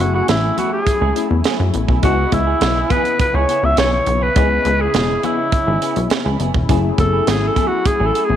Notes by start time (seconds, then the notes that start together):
Already playing: F#3 A3 C#4 E4 G#4 G#5
0.00 F#1 F#4, muted clean electric guitar stroke
0.14 A3 E4 F#4 G#4
0.28 A1 E4, snare, closed hi-hat, high conga
0.43 A3 E4 G#4
0.57 A3 E4 F#4 G#4, closed hi-hat, high conga, low conga
0.72 G#4, muted clean electric guitar stroke
0.86 muted clean electric guitar stroke, kick, closed hi-hat
1.01 C#2 A3 E4 G#4
1.15 A3 C#4 E4 G#4, closed hi-hat, muted conga
1.30 E2, high conga
1.44 A3 E4 G#4, snare, closed hi-hat
1.60 F#2, muted clean electric guitar stroke, low conga
1.74 A1, muted clean electric guitar stroke, closed hi-hat, muted conga, high conga
1.88 B1 A3 E4 G#4, kick
2.02 C#2 C#3 B3 E4 F#4 G#4 D#5, kick, closed hi-hat, muted conga
2.18 muted clean electric guitar stroke
2.32 C#2 E4, muted clean electric guitar stroke, kick, closed hi-hat, muted conga, high conga
2.47 B3 E4 G#4
2.61 B1, snare, closed hi-hat, muted conga, high conga
2.76 B3 E4 G#4
2.90 B3 E4 G#4 B4, kick, closed hi-hat, muted conga, high conga, low conga
3.05 muted clean electric guitar stroke, closed hi-hat
3.19 B4, muted clean electric guitar stroke, kick, closed hi-hat, muted conga
3.34 C#2 B3 E4 G#4 C#5
3.49 B3 E4 G#4, closed hi-hat, muted conga
3.63 C#2 E5, muted clean electric guitar stroke, high conga
3.77 B1 B3 E4 G#4 C#5, snare, closed hi-hat
3.92 C#5, muted clean electric guitar stroke, low conga
4.06 B1, muted clean electric guitar stroke, closed hi-hat, high conga
4.21 B3 E4 G#4 B4
4.35 C#2 B3 C#4 E4 G#4 D#5, kick, closed hi-hat, muted conga
4.50 muted clean electric guitar stroke
4.65 C#2, muted clean electric guitar stroke, closed hi-hat, high conga
4.79 B3 E4 G#4
4.94 E1, muted clean electric guitar stroke, snare, closed hi-hat, muted conga, high conga
5.08 B3 E4 G#4
5.23 B3 E4 G#4, closed hi-hat, muted conga, high conga, low conga
5.38 muted clean electric guitar stroke
5.52 muted clean electric guitar stroke, kick, closed hi-hat, muted conga
5.67 G#1 B3 E4 G#4
5.81 B3 E4 G#4, closed hi-hat
5.96 B1, muted clean electric guitar stroke, closed hi-hat, high conga
6.10 muted clean electric guitar stroke, snare, closed hi-hat
6.25 C#2 B3 E4 G#4, low conga
6.39 F#1 B3 E4 G#4, closed hi-hat, muted conga, high conga
6.54 E1, muted clean electric guitar stroke, kick
6.69 F#1 F#3 A3 C#4 E4 G#4, kick, closed hi-hat, muted conga
6.83 muted clean electric guitar stroke
6.98 F#1 A4, muted clean electric guitar stroke, kick, closed hi-hat, high conga
7.12 A3 E4 G#4
7.27 G#1 G#4, snare, closed hi-hat, muted conga, high conga
7.41 A3 E4 G#4
7.48 A4
7.56 A3 E4 G#4, kick, closed hi-hat, high conga, low conga
7.67 F#4, muted clean electric guitar stroke
7.85 G#4, muted clean electric guitar stroke, kick, closed hi-hat, muted conga
7.99 A1 A3 E4 G#4
8.06 A4
8.14 A3 E4 G#4, closed hi-hat
8.25 G#4
8.29 A1, muted clean electric guitar stroke, high conga